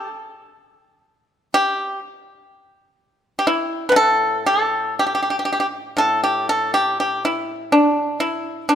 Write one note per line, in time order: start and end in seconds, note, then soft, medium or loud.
1.54 1.99 G4 medium
3.39 3.45 G4 medium
3.47 3.86 E4 medium
3.89 5.95 A2 medium
3.89 3.95 B4 medium
3.96 4.42 A4 loud
4.46 4.93 A4 medium
4.99 5.05 G4 medium
5.07 5.12 G4 soft
5.15 5.20 G4 soft
5.23 5.28 G4 soft
5.30 5.36 G4 soft
5.39 5.44 G4 soft
5.45 5.51 G4 soft
5.53 5.58 G4 soft
5.60 5.66 G4 soft
5.97 8.75 A2 soft
5.97 6.22 A4 medium
6.24 6.47 G4 medium
6.49 6.72 A4 medium
6.74 6.97 G4 medium
7.00 7.22 G4 medium
7.25 7.70 E4 medium
7.72 8.17 D4 medium
8.20 8.64 E4 medium
8.69 8.75 D4 medium